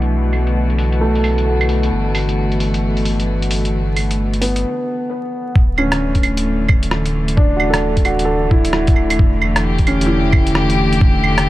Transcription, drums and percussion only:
0.02 closed hi-hat
0.33 open hi-hat, claves
0.47 closed hi-hat
0.70 closed hi-hat
0.78 open hi-hat
0.92 closed hi-hat
1.15 open hi-hat
1.24 open hi-hat, claves
1.38 closed hi-hat
1.61 closed hi-hat, claves
1.69 open hi-hat
1.83 closed hi-hat
2.15 open hi-hat, claves
2.29 closed hi-hat
2.52 closed hi-hat
2.60 open hi-hat
2.74 closed hi-hat
2.97 open hi-hat
3.05 open hi-hat
3.20 closed hi-hat
3.42 closed hi-hat
3.51 open hi-hat
3.65 closed hi-hat
3.96 open hi-hat, claves
4.11 closed hi-hat
4.33 closed hi-hat
4.42 open hi-hat
4.56 closed hi-hat
5.56 kick
5.78 claves
5.92 cross-stick, closed hi-hat
6.15 kick, closed hi-hat
6.23 closed hi-hat, claves
6.37 closed hi-hat
6.68 kick, claves
6.83 closed hi-hat
6.91 cross-stick
7.06 closed hi-hat
7.28 closed hi-hat
7.37 kick
7.60 claves
7.74 cross-stick, closed hi-hat
7.97 kick, closed hi-hat
8.05 closed hi-hat, claves
8.19 closed hi-hat
8.51 kick
8.65 closed hi-hat
8.73 cross-stick
8.87 kick, closed hi-hat
8.96 claves
9.10 closed hi-hat, claves
9.19 kick
9.42 claves
9.56 cross-stick, closed hi-hat
9.78 kick, closed hi-hat
9.87 closed hi-hat, claves
10.01 closed hi-hat
10.32 kick, claves
10.47 closed hi-hat
10.55 cross-stick
10.70 closed hi-hat
10.93 closed hi-hat
11.01 kick
11.24 claves
11.38 cross-stick, closed hi-hat

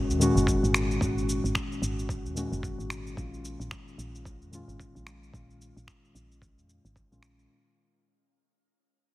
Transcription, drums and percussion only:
0.10 shaker
0.21 shaker
0.37 shaker
0.47 kick, shaker
0.64 shaker
0.74 finger snap, shaker
0.91 shaker
1.01 kick, shaker
1.18 shaker
1.29 shaker
1.45 shaker
1.55 finger snap, kick, shaker
1.72 shaker
1.83 shaker
1.99 shaker
2.09 kick, shaker
2.26 shaker
2.37 shaker
2.53 shaker
2.63 kick, shaker
2.80 shaker
2.90 finger snap, shaker
3.07 shaker
3.17 kick, shaker
3.34 shaker
3.45 shaker
3.61 shaker
3.71 finger snap, kick, shaker
3.88 shaker
3.99 shaker
4.15 shaker
4.25 kick, shaker
4.42 shaker
4.53 shaker
4.69 shaker
4.80 kick, shaker
4.96 shaker
5.07 finger snap, shaker
5.23 shaker
5.34 kick, shaker
5.50 shaker
5.62 shaker
5.77 shaker
5.88 finger snap, kick, shaker
6.05 shaker
6.16 shaker
6.32 shaker
6.42 kick, shaker
6.58 shaker
6.69 shaker
6.85 shaker
6.96 kick, shaker
7.12 shaker
7.23 finger snap, shaker
7.39 shaker

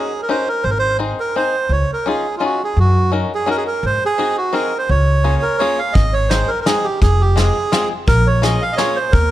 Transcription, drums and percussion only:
5.95 kick, closed hi-hat
6.31 snare, closed hi-hat
6.66 snare, closed hi-hat
7.02 kick, closed hi-hat
7.37 snare, closed hi-hat
7.72 snare, closed hi-hat
8.08 kick, closed hi-hat
8.43 snare, closed hi-hat
8.78 snare, closed hi-hat
9.13 kick, closed hi-hat

